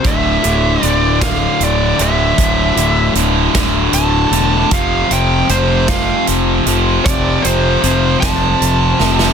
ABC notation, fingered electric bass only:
X:1
M:6/8
L:1/8
Q:3/8=51
K:Dm
V:1 name="Fingered electric bass" clef=bass
D,,, D,,, D,,,2 D,,, D,,, | D,,, D,,, D,,, D,,, D,,, E,,, | F,,, F,,, F,,,2 F,,, F,,, | F,,, F,,, F,,, F,,, F,,, F,,, |]